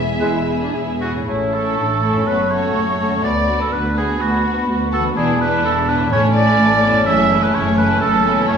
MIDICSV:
0, 0, Header, 1, 13, 480
1, 0, Start_track
1, 0, Key_signature, 3, "major"
1, 0, Tempo, 530035
1, 1160, Time_signature, 4, 2, 24, 8
1, 1623, Tempo, 483481
1, 4503, Tempo, 474308
1, 8432, End_track
2, 0, Start_track
2, 0, Title_t, "Flute section"
2, 0, Program_c, 0, 73
2, 0, Note_on_c, 0, 76, 46
2, 913, Note_off_c, 0, 76, 0
2, 1161, Note_on_c, 0, 85, 29
2, 3023, Note_off_c, 0, 85, 0
2, 3051, Note_on_c, 0, 83, 31
2, 5939, Note_off_c, 0, 83, 0
2, 5941, Note_on_c, 0, 81, 46
2, 8432, Note_off_c, 0, 81, 0
2, 8432, End_track
3, 0, Start_track
3, 0, Title_t, "Oboe"
3, 0, Program_c, 1, 68
3, 185, Note_on_c, 1, 71, 36
3, 355, Note_off_c, 1, 71, 0
3, 914, Note_on_c, 1, 66, 47
3, 1024, Note_off_c, 1, 66, 0
3, 1151, Note_on_c, 1, 64, 37
3, 1396, Note_on_c, 1, 69, 47
3, 1410, Note_off_c, 1, 64, 0
3, 2096, Note_on_c, 1, 71, 45
3, 2111, Note_off_c, 1, 69, 0
3, 2335, Note_on_c, 1, 73, 51
3, 2350, Note_off_c, 1, 71, 0
3, 3059, Note_off_c, 1, 73, 0
3, 3063, Note_on_c, 1, 74, 54
3, 3416, Note_off_c, 1, 74, 0
3, 3430, Note_on_c, 1, 69, 43
3, 3541, Note_on_c, 1, 71, 39
3, 3556, Note_off_c, 1, 69, 0
3, 3784, Note_off_c, 1, 71, 0
3, 3793, Note_on_c, 1, 68, 47
3, 4022, Note_on_c, 1, 66, 42
3, 4037, Note_off_c, 1, 68, 0
3, 4500, Note_off_c, 1, 66, 0
3, 4745, Note_on_c, 1, 69, 54
3, 4854, Note_off_c, 1, 69, 0
3, 4980, Note_on_c, 1, 68, 43
3, 5218, Note_off_c, 1, 68, 0
3, 5230, Note_on_c, 1, 71, 54
3, 5462, Note_off_c, 1, 71, 0
3, 5472, Note_on_c, 1, 69, 50
3, 5709, Note_on_c, 1, 71, 55
3, 5724, Note_off_c, 1, 69, 0
3, 5947, Note_off_c, 1, 71, 0
3, 5953, Note_on_c, 1, 73, 61
3, 6059, Note_off_c, 1, 73, 0
3, 6191, Note_on_c, 1, 74, 71
3, 6894, Note_off_c, 1, 74, 0
3, 6900, Note_on_c, 1, 76, 68
3, 7274, Note_on_c, 1, 71, 58
3, 7289, Note_off_c, 1, 76, 0
3, 7391, Note_on_c, 1, 73, 51
3, 7406, Note_off_c, 1, 71, 0
3, 7621, Note_off_c, 1, 73, 0
3, 7627, Note_on_c, 1, 71, 63
3, 7850, Note_off_c, 1, 71, 0
3, 7857, Note_on_c, 1, 69, 67
3, 8328, Note_off_c, 1, 69, 0
3, 8334, Note_on_c, 1, 73, 67
3, 8432, Note_off_c, 1, 73, 0
3, 8432, End_track
4, 0, Start_track
4, 0, Title_t, "Violin section"
4, 0, Program_c, 2, 48
4, 0, Note_on_c, 2, 68, 31
4, 415, Note_off_c, 2, 68, 0
4, 426, Note_on_c, 2, 68, 36
4, 901, Note_off_c, 2, 68, 0
4, 911, Note_on_c, 2, 68, 31
4, 913, Note_on_c, 2, 66, 38
4, 985, Note_off_c, 2, 66, 0
4, 1145, Note_on_c, 2, 64, 30
4, 1153, Note_off_c, 2, 68, 0
4, 1380, Note_on_c, 2, 69, 36
4, 1384, Note_off_c, 2, 64, 0
4, 2094, Note_off_c, 2, 69, 0
4, 2095, Note_on_c, 2, 71, 40
4, 2323, Note_on_c, 2, 73, 46
4, 2333, Note_off_c, 2, 71, 0
4, 3038, Note_off_c, 2, 73, 0
4, 3055, Note_on_c, 2, 74, 44
4, 3408, Note_on_c, 2, 69, 42
4, 3419, Note_off_c, 2, 74, 0
4, 3530, Note_on_c, 2, 71, 37
4, 3536, Note_off_c, 2, 69, 0
4, 3776, Note_on_c, 2, 68, 40
4, 3779, Note_off_c, 2, 71, 0
4, 4022, Note_off_c, 2, 68, 0
4, 4022, Note_on_c, 2, 66, 37
4, 4500, Note_off_c, 2, 66, 0
4, 4730, Note_on_c, 2, 69, 41
4, 4811, Note_off_c, 2, 69, 0
4, 4967, Note_on_c, 2, 68, 39
4, 5212, Note_off_c, 2, 68, 0
4, 5223, Note_on_c, 2, 71, 48
4, 5458, Note_off_c, 2, 71, 0
4, 5460, Note_on_c, 2, 69, 46
4, 5541, Note_off_c, 2, 69, 0
4, 5705, Note_on_c, 2, 71, 44
4, 5786, Note_off_c, 2, 71, 0
4, 5934, Note_on_c, 2, 73, 56
4, 6175, Note_off_c, 2, 73, 0
4, 6175, Note_on_c, 2, 74, 63
4, 6888, Note_off_c, 2, 74, 0
4, 6894, Note_on_c, 2, 76, 57
4, 7249, Note_on_c, 2, 71, 49
4, 7254, Note_off_c, 2, 76, 0
4, 7301, Note_off_c, 2, 71, 0
4, 7391, Note_on_c, 2, 73, 49
4, 7621, Note_on_c, 2, 71, 50
4, 7627, Note_off_c, 2, 73, 0
4, 7866, Note_off_c, 2, 71, 0
4, 7869, Note_on_c, 2, 69, 63
4, 8334, Note_off_c, 2, 69, 0
4, 8334, Note_on_c, 2, 73, 52
4, 8432, Note_off_c, 2, 73, 0
4, 8432, End_track
5, 0, Start_track
5, 0, Title_t, "Harp"
5, 0, Program_c, 3, 46
5, 0, Note_on_c, 3, 52, 43
5, 0, Note_on_c, 3, 64, 33
5, 0, Note_on_c, 3, 68, 30
5, 0, Note_on_c, 3, 71, 29
5, 193, Note_on_c, 3, 56, 31
5, 426, Note_off_c, 3, 64, 0
5, 436, Note_on_c, 3, 64, 30
5, 669, Note_off_c, 3, 71, 0
5, 680, Note_on_c, 3, 71, 30
5, 909, Note_off_c, 3, 68, 0
5, 920, Note_on_c, 3, 68, 30
5, 998, Note_on_c, 3, 45, 30
5, 1039, Note_on_c, 3, 57, 25
5, 1067, Note_off_c, 3, 64, 0
5, 1078, Note_on_c, 3, 64, 25
5, 1119, Note_on_c, 3, 73, 26
5, 1180, Note_off_c, 3, 52, 0
5, 1181, Note_off_c, 3, 68, 0
5, 1182, Note_off_c, 3, 56, 0
5, 1183, Note_off_c, 3, 71, 0
5, 1916, Note_on_c, 3, 42, 30
5, 1949, Note_off_c, 3, 57, 0
5, 1961, Note_on_c, 3, 57, 25
5, 2006, Note_on_c, 3, 66, 23
5, 2034, Note_off_c, 3, 45, 0
5, 2038, Note_off_c, 3, 73, 0
5, 2050, Note_on_c, 3, 73, 25
5, 2077, Note_off_c, 3, 64, 0
5, 2870, Note_on_c, 3, 50, 31
5, 2915, Note_on_c, 3, 59, 28
5, 2949, Note_off_c, 3, 66, 0
5, 2961, Note_on_c, 3, 66, 29
5, 2988, Note_off_c, 3, 42, 0
5, 3002, Note_on_c, 3, 71, 27
5, 3010, Note_off_c, 3, 57, 0
5, 3055, Note_off_c, 3, 73, 0
5, 4795, Note_on_c, 3, 52, 37
5, 4845, Note_on_c, 3, 62, 31
5, 4889, Note_on_c, 3, 64, 31
5, 4907, Note_off_c, 3, 50, 0
5, 4924, Note_off_c, 3, 71, 0
5, 4936, Note_on_c, 3, 71, 31
5, 4953, Note_off_c, 3, 66, 0
5, 5757, Note_on_c, 3, 45, 40
5, 5800, Note_on_c, 3, 61, 33
5, 5834, Note_off_c, 3, 64, 0
5, 5846, Note_on_c, 3, 64, 31
5, 5869, Note_off_c, 3, 52, 0
5, 5889, Note_off_c, 3, 59, 0
5, 5893, Note_on_c, 3, 69, 37
5, 5894, Note_off_c, 3, 62, 0
5, 5939, Note_off_c, 3, 71, 0
5, 6719, Note_on_c, 3, 42, 46
5, 6752, Note_off_c, 3, 61, 0
5, 6764, Note_on_c, 3, 61, 36
5, 6811, Note_on_c, 3, 66, 35
5, 6833, Note_off_c, 3, 45, 0
5, 6844, Note_off_c, 3, 69, 0
5, 6856, Note_on_c, 3, 69, 38
5, 8432, Note_off_c, 3, 42, 0
5, 8432, Note_off_c, 3, 61, 0
5, 8432, Note_off_c, 3, 64, 0
5, 8432, Note_off_c, 3, 66, 0
5, 8432, Note_off_c, 3, 69, 0
5, 8432, End_track
6, 0, Start_track
6, 0, Title_t, "Violin section"
6, 0, Program_c, 4, 48
6, 0, Note_on_c, 4, 76, 47
6, 881, Note_off_c, 4, 76, 0
6, 1385, Note_on_c, 4, 69, 28
6, 1387, Note_on_c, 4, 64, 28
6, 1835, Note_off_c, 4, 64, 0
6, 1836, Note_off_c, 4, 69, 0
6, 1847, Note_on_c, 4, 64, 29
6, 1848, Note_on_c, 4, 69, 28
6, 2082, Note_off_c, 4, 69, 0
6, 2089, Note_off_c, 4, 64, 0
6, 2094, Note_on_c, 4, 69, 28
6, 2096, Note_on_c, 4, 66, 25
6, 2317, Note_off_c, 4, 66, 0
6, 2318, Note_off_c, 4, 69, 0
6, 2329, Note_on_c, 4, 66, 29
6, 2330, Note_on_c, 4, 69, 30
6, 2806, Note_off_c, 4, 66, 0
6, 2807, Note_off_c, 4, 69, 0
6, 2817, Note_on_c, 4, 66, 27
6, 2819, Note_on_c, 4, 69, 28
6, 3055, Note_off_c, 4, 66, 0
6, 3056, Note_off_c, 4, 69, 0
6, 3286, Note_on_c, 4, 66, 31
6, 3287, Note_off_c, 4, 66, 0
6, 3287, Note_on_c, 4, 66, 31
6, 3759, Note_off_c, 4, 66, 0
6, 3771, Note_on_c, 4, 66, 30
6, 3774, Note_off_c, 4, 66, 0
6, 3774, Note_on_c, 4, 66, 36
6, 4251, Note_off_c, 4, 66, 0
6, 4265, Note_on_c, 4, 66, 31
6, 4266, Note_off_c, 4, 66, 0
6, 4266, Note_on_c, 4, 66, 34
6, 4725, Note_off_c, 4, 66, 0
6, 4737, Note_on_c, 4, 66, 30
6, 4738, Note_off_c, 4, 66, 0
6, 4738, Note_on_c, 4, 66, 34
6, 4977, Note_off_c, 4, 66, 0
6, 4984, Note_on_c, 4, 62, 38
6, 4987, Note_on_c, 4, 64, 36
6, 5215, Note_off_c, 4, 62, 0
6, 5219, Note_off_c, 4, 64, 0
6, 5227, Note_on_c, 4, 62, 37
6, 5231, Note_on_c, 4, 64, 39
6, 5695, Note_off_c, 4, 62, 0
6, 5695, Note_off_c, 4, 64, 0
6, 5707, Note_on_c, 4, 62, 36
6, 5707, Note_on_c, 4, 64, 35
6, 5929, Note_off_c, 4, 64, 0
6, 5940, Note_on_c, 4, 61, 39
6, 5941, Note_on_c, 4, 64, 38
6, 5942, Note_off_c, 4, 62, 0
6, 6163, Note_off_c, 4, 61, 0
6, 6163, Note_off_c, 4, 64, 0
6, 6175, Note_on_c, 4, 61, 41
6, 6176, Note_on_c, 4, 64, 42
6, 6648, Note_off_c, 4, 64, 0
6, 6652, Note_off_c, 4, 61, 0
6, 6660, Note_on_c, 4, 64, 41
6, 6665, Note_on_c, 4, 61, 36
6, 6889, Note_off_c, 4, 61, 0
6, 6890, Note_off_c, 4, 64, 0
6, 6901, Note_on_c, 4, 61, 44
6, 6902, Note_on_c, 4, 64, 44
6, 7133, Note_off_c, 4, 61, 0
6, 7137, Note_off_c, 4, 64, 0
6, 7145, Note_on_c, 4, 61, 43
6, 7149, Note_on_c, 4, 64, 42
6, 7606, Note_off_c, 4, 61, 0
6, 7607, Note_off_c, 4, 64, 0
6, 7618, Note_on_c, 4, 61, 42
6, 7619, Note_on_c, 4, 64, 41
6, 8084, Note_off_c, 4, 64, 0
6, 8086, Note_off_c, 4, 61, 0
6, 8096, Note_on_c, 4, 64, 44
6, 8098, Note_on_c, 4, 61, 46
6, 8432, Note_off_c, 4, 61, 0
6, 8432, Note_off_c, 4, 64, 0
6, 8432, End_track
7, 0, Start_track
7, 0, Title_t, "Clarinet"
7, 0, Program_c, 5, 71
7, 191, Note_on_c, 5, 64, 37
7, 359, Note_off_c, 5, 64, 0
7, 1155, Note_on_c, 5, 61, 37
7, 1589, Note_off_c, 5, 61, 0
7, 1617, Note_on_c, 5, 62, 33
7, 1850, Note_off_c, 5, 62, 0
7, 1856, Note_on_c, 5, 61, 36
7, 2090, Note_on_c, 5, 59, 38
7, 2105, Note_off_c, 5, 61, 0
7, 2564, Note_off_c, 5, 59, 0
7, 2570, Note_on_c, 5, 57, 30
7, 2681, Note_off_c, 5, 57, 0
7, 2809, Note_on_c, 5, 61, 34
7, 3045, Note_on_c, 5, 59, 40
7, 3060, Note_off_c, 5, 61, 0
7, 3528, Note_off_c, 5, 59, 0
7, 3534, Note_on_c, 5, 62, 41
7, 4479, Note_off_c, 5, 62, 0
7, 4502, Note_on_c, 5, 66, 43
7, 4975, Note_off_c, 5, 66, 0
7, 4987, Note_on_c, 5, 64, 54
7, 5467, Note_on_c, 5, 62, 43
7, 5482, Note_off_c, 5, 64, 0
7, 5943, Note_on_c, 5, 61, 49
7, 5959, Note_off_c, 5, 62, 0
7, 6426, Note_on_c, 5, 57, 41
7, 6441, Note_off_c, 5, 61, 0
7, 6665, Note_on_c, 5, 59, 46
7, 6680, Note_off_c, 5, 57, 0
7, 6902, Note_off_c, 5, 59, 0
7, 6908, Note_on_c, 5, 61, 57
7, 7214, Note_off_c, 5, 61, 0
7, 7385, Note_on_c, 5, 57, 52
7, 7835, Note_off_c, 5, 57, 0
7, 7869, Note_on_c, 5, 61, 54
7, 8113, Note_on_c, 5, 59, 50
7, 8129, Note_off_c, 5, 61, 0
7, 8335, Note_off_c, 5, 59, 0
7, 8341, Note_on_c, 5, 57, 46
7, 8432, Note_off_c, 5, 57, 0
7, 8432, End_track
8, 0, Start_track
8, 0, Title_t, "Bassoon"
8, 0, Program_c, 6, 70
8, 185, Note_on_c, 6, 56, 41
8, 355, Note_off_c, 6, 56, 0
8, 1154, Note_on_c, 6, 57, 33
8, 3020, Note_off_c, 6, 57, 0
8, 3053, Note_on_c, 6, 59, 35
8, 4942, Note_off_c, 6, 59, 0
8, 4985, Note_on_c, 6, 62, 42
8, 5941, Note_on_c, 6, 61, 46
8, 5956, Note_off_c, 6, 62, 0
8, 8432, Note_off_c, 6, 61, 0
8, 8432, End_track
9, 0, Start_track
9, 0, Title_t, "French horn section"
9, 0, Program_c, 7, 60
9, 0, Note_on_c, 7, 56, 49
9, 0, Note_on_c, 7, 59, 47
9, 885, Note_off_c, 7, 56, 0
9, 918, Note_off_c, 7, 59, 0
9, 8432, End_track
10, 0, Start_track
10, 0, Title_t, "Viola section"
10, 0, Program_c, 8, 48
10, 0, Note_on_c, 8, 59, 36
10, 192, Note_off_c, 8, 59, 0
10, 193, Note_on_c, 8, 64, 44
10, 546, Note_off_c, 8, 64, 0
10, 560, Note_on_c, 8, 62, 39
10, 662, Note_on_c, 8, 64, 45
10, 675, Note_off_c, 8, 62, 0
10, 899, Note_off_c, 8, 64, 0
10, 910, Note_on_c, 8, 64, 40
10, 1152, Note_off_c, 8, 64, 0
10, 1392, Note_on_c, 8, 61, 31
10, 1394, Note_on_c, 8, 57, 28
10, 1848, Note_off_c, 8, 57, 0
10, 1849, Note_off_c, 8, 61, 0
10, 1860, Note_on_c, 8, 57, 28
10, 1861, Note_on_c, 8, 61, 28
10, 2085, Note_off_c, 8, 61, 0
10, 2087, Note_off_c, 8, 57, 0
10, 2097, Note_on_c, 8, 61, 25
10, 2099, Note_on_c, 8, 57, 26
10, 2320, Note_off_c, 8, 57, 0
10, 2324, Note_off_c, 8, 61, 0
10, 2332, Note_on_c, 8, 57, 31
10, 2336, Note_on_c, 8, 61, 31
10, 2799, Note_off_c, 8, 57, 0
10, 2801, Note_off_c, 8, 61, 0
10, 2811, Note_on_c, 8, 57, 29
10, 2813, Note_on_c, 8, 61, 30
10, 3052, Note_off_c, 8, 57, 0
10, 3053, Note_off_c, 8, 61, 0
10, 3301, Note_on_c, 8, 59, 33
10, 3775, Note_off_c, 8, 59, 0
10, 3790, Note_on_c, 8, 59, 34
10, 3791, Note_off_c, 8, 59, 0
10, 3791, Note_on_c, 8, 59, 32
10, 4257, Note_off_c, 8, 59, 0
10, 4269, Note_on_c, 8, 59, 34
10, 4272, Note_off_c, 8, 59, 0
10, 4272, Note_on_c, 8, 59, 34
10, 4729, Note_off_c, 8, 59, 0
10, 4741, Note_on_c, 8, 59, 35
10, 4742, Note_off_c, 8, 59, 0
10, 4742, Note_on_c, 8, 59, 34
10, 4980, Note_off_c, 8, 59, 0
10, 4995, Note_on_c, 8, 52, 36
10, 4995, Note_on_c, 8, 59, 38
10, 5211, Note_off_c, 8, 52, 0
10, 5212, Note_off_c, 8, 59, 0
10, 5223, Note_on_c, 8, 52, 40
10, 5224, Note_on_c, 8, 59, 41
10, 5691, Note_off_c, 8, 59, 0
10, 5693, Note_off_c, 8, 52, 0
10, 5703, Note_on_c, 8, 59, 37
10, 5705, Note_on_c, 8, 52, 39
10, 5932, Note_off_c, 8, 52, 0
10, 5939, Note_off_c, 8, 59, 0
10, 5943, Note_on_c, 8, 57, 33
10, 5944, Note_on_c, 8, 52, 37
10, 6167, Note_off_c, 8, 52, 0
10, 6171, Note_off_c, 8, 57, 0
10, 6179, Note_on_c, 8, 52, 39
10, 6184, Note_on_c, 8, 57, 41
10, 6654, Note_off_c, 8, 52, 0
10, 6654, Note_off_c, 8, 57, 0
10, 6665, Note_on_c, 8, 52, 43
10, 6666, Note_on_c, 8, 57, 44
10, 6894, Note_off_c, 8, 52, 0
10, 6898, Note_off_c, 8, 57, 0
10, 6906, Note_on_c, 8, 52, 45
10, 6910, Note_on_c, 8, 57, 44
10, 7138, Note_off_c, 8, 52, 0
10, 7138, Note_off_c, 8, 57, 0
10, 7150, Note_on_c, 8, 52, 45
10, 7150, Note_on_c, 8, 57, 42
10, 7613, Note_off_c, 8, 57, 0
10, 7616, Note_off_c, 8, 52, 0
10, 7625, Note_on_c, 8, 57, 45
10, 7628, Note_on_c, 8, 52, 47
10, 8089, Note_off_c, 8, 52, 0
10, 8090, Note_off_c, 8, 57, 0
10, 8101, Note_on_c, 8, 52, 45
10, 8102, Note_on_c, 8, 57, 44
10, 8432, Note_off_c, 8, 52, 0
10, 8432, Note_off_c, 8, 57, 0
10, 8432, End_track
11, 0, Start_track
11, 0, Title_t, "Timpani"
11, 0, Program_c, 10, 47
11, 5943, Note_on_c, 10, 45, 44
11, 6625, Note_off_c, 10, 45, 0
11, 8432, End_track
12, 0, Start_track
12, 0, Title_t, "Cello section"
12, 0, Program_c, 11, 48
12, 0, Note_on_c, 11, 40, 42
12, 134, Note_off_c, 11, 40, 0
12, 196, Note_on_c, 11, 40, 42
12, 618, Note_off_c, 11, 40, 0
12, 673, Note_on_c, 11, 40, 40
12, 1104, Note_off_c, 11, 40, 0
12, 1155, Note_on_c, 11, 45, 39
12, 1568, Note_off_c, 11, 45, 0
12, 1622, Note_on_c, 11, 45, 35
12, 2046, Note_off_c, 11, 45, 0
12, 2097, Note_on_c, 11, 42, 39
12, 2521, Note_off_c, 11, 42, 0
12, 2575, Note_on_c, 11, 42, 35
12, 3002, Note_off_c, 11, 42, 0
12, 3057, Note_on_c, 11, 38, 43
12, 3484, Note_off_c, 11, 38, 0
12, 3538, Note_on_c, 11, 38, 35
12, 3967, Note_off_c, 11, 38, 0
12, 4028, Note_on_c, 11, 38, 43
12, 4447, Note_off_c, 11, 38, 0
12, 4501, Note_on_c, 11, 38, 43
12, 4927, Note_off_c, 11, 38, 0
12, 4984, Note_on_c, 11, 40, 47
12, 5407, Note_off_c, 11, 40, 0
12, 5462, Note_on_c, 11, 40, 49
12, 5887, Note_off_c, 11, 40, 0
12, 5939, Note_on_c, 11, 45, 48
12, 6366, Note_off_c, 11, 45, 0
12, 6425, Note_on_c, 11, 45, 46
12, 6851, Note_off_c, 11, 45, 0
12, 6905, Note_on_c, 11, 42, 54
12, 7331, Note_off_c, 11, 42, 0
12, 7388, Note_on_c, 11, 42, 51
12, 7815, Note_off_c, 11, 42, 0
12, 7869, Note_on_c, 11, 42, 52
12, 8288, Note_off_c, 11, 42, 0
12, 8339, Note_on_c, 11, 42, 50
12, 8432, Note_off_c, 11, 42, 0
12, 8432, End_track
13, 0, Start_track
13, 0, Title_t, "Double bass section"
13, 0, Program_c, 12, 48
13, 0, Note_on_c, 12, 28, 43
13, 130, Note_off_c, 12, 28, 0
13, 191, Note_on_c, 12, 28, 43
13, 616, Note_off_c, 12, 28, 0
13, 671, Note_on_c, 12, 28, 40
13, 1103, Note_off_c, 12, 28, 0
13, 1162, Note_on_c, 12, 33, 33
13, 1571, Note_off_c, 12, 33, 0
13, 1622, Note_on_c, 12, 33, 34
13, 2046, Note_off_c, 12, 33, 0
13, 2091, Note_on_c, 12, 30, 38
13, 2518, Note_off_c, 12, 30, 0
13, 2578, Note_on_c, 12, 30, 36
13, 3004, Note_off_c, 12, 30, 0
13, 3054, Note_on_c, 12, 38, 39
13, 3482, Note_off_c, 12, 38, 0
13, 3539, Note_on_c, 12, 38, 40
13, 3968, Note_off_c, 12, 38, 0
13, 4021, Note_on_c, 12, 38, 41
13, 4443, Note_off_c, 12, 38, 0
13, 4493, Note_on_c, 12, 38, 44
13, 4923, Note_off_c, 12, 38, 0
13, 4980, Note_on_c, 12, 28, 45
13, 5405, Note_off_c, 12, 28, 0
13, 5457, Note_on_c, 12, 28, 44
13, 5884, Note_off_c, 12, 28, 0
13, 5946, Note_on_c, 12, 33, 55
13, 6369, Note_off_c, 12, 33, 0
13, 6423, Note_on_c, 12, 33, 50
13, 6850, Note_off_c, 12, 33, 0
13, 6900, Note_on_c, 12, 30, 49
13, 7328, Note_off_c, 12, 30, 0
13, 7383, Note_on_c, 12, 30, 53
13, 7812, Note_off_c, 12, 30, 0
13, 7867, Note_on_c, 12, 30, 56
13, 8287, Note_off_c, 12, 30, 0
13, 8339, Note_on_c, 12, 30, 50
13, 8432, Note_off_c, 12, 30, 0
13, 8432, End_track
0, 0, End_of_file